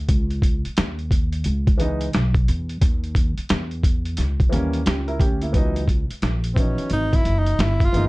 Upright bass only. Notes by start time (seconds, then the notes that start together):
0.09 C#2
0.66 muted upright bass stroke
0.78 D#2
1.46 C#2
2.14 B1
2.49 E2
2.82 D#2
3.38 muted upright bass stroke
3.50 E2
4.18 C#2
4.52 D#2
4.86 C#2
5.20 D2
5.54 C#2
6.10 muted upright bass stroke
6.22 A#1
6.79 muted upright bass stroke
6.91 G#1
7.25 F#1
7.59 G1
7.93 G1